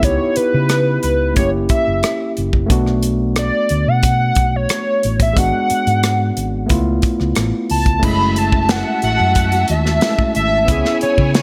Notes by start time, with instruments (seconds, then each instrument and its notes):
0.00 fingered electric bass C#2, tine electric piano B3 D#4 E4, kick, closed hi-hat
0.04 tine electric piano G4, analog synth lead C#5
0.36 analog synth lead B4, muted fingered electric bass stroke, closed hi-hat
0.54 fingered electric bass C#3
0.69 cross-stick, closed hi-hat
1.03 fingered electric bass C#2, analog synth lead B4, closed hi-hat
1.33 fingered electric bass F#1, tine electric piano A3 C#4 E4, analog synth lead C#5, kick, closed hi-hat
1.39 tine electric piano A#3 G4
1.69 analog synth lead E5, kick, closed hi-hat
1.87 fingered electric bass F#1
2.03 cross-stick, closed hi-hat
2.37 fingered electric bass F#1, closed hi-hat
2.53 kick
2.66 tine electric piano A3 B3, kick, closed hi-hat
2.70 fingered electric bass B1, tine electric piano D4 F#4
2.87 cross-stick
3.03 closed hi-hat
3.36 analog synth lead D5, cross-stick, closed hi-hat
3.69 fingered electric bass D2, closed hi-hat
3.88 fingered electric bass B2, analog synth lead F#5
4.03 kick, closed hi-hat
4.35 fingered electric bass B1, kick, closed hi-hat
4.56 analog synth lead C#5
4.69 cross-stick, closed hi-hat
5.03 fingered electric bass A1, closed hi-hat
5.20 analog synth lead E5, kick, closed hi-hat
5.33 fingered electric bass G#1, tine electric piano G#3 B3, kick, closed hi-hat
5.38 tine electric piano D4 F#4, analog synth lead F#5
5.70 muted fingered electric bass stroke, closed hi-hat
5.87 fingered electric bass G#2, closed hi-hat
6.03 cross-stick, closed hi-hat
6.37 fingered electric bass G#1, closed hi-hat
6.66 tine electric piano A3 B3 E4, kick, closed hi-hat
6.71 fingered electric bass C#2, tine electric piano F4
7.02 kick, closed hi-hat
7.20 fingered electric bass C#2, cross-stick
7.35 fingered electric bass A1, cross-stick, closed hi-hat
7.70 fingered electric bass C#2, analog synth lead A5, open hi-hat
7.86 kick, closed hi-hat
7.99 tine electric piano A3 C#4 E4, kick, crash
8.03 fingered electric bass F#1, tine electric piano G#3, string section F#4 E5 A5, analog synth lead B5
8.36 analog synth lead A5, closed hi-hat
8.52 kick
8.69 analog synth lead F#5, snare, closed hi-hat
9.02 fingered electric bass A1, analog synth lead F#5, closed hi-hat
9.20 fingered electric bass F#2
9.35 kick, closed hi-hat
9.52 closed hi-hat
9.68 fingered electric bass D#2, analog synth lead E5, closed hi-hat
9.86 snare
10.00 tine electric piano G#3 A3 C#4 E4, snare, closed hi-hat
10.19 kick
10.35 fingered electric bass G#1, analog synth lead E5, closed hi-hat
10.65 fingered electric bass C#2, tine electric piano B3 C#4 E4, string section E4 C#5 G#5, kick, closed hi-hat
10.71 tine electric piano G#4
10.85 snare
11.01 analog synth lead C#5, muted fingered electric bass stroke, closed hi-hat
11.18 fingered electric bass C#3, analog synth lead C#5, kick
11.35 snare, closed hi-hat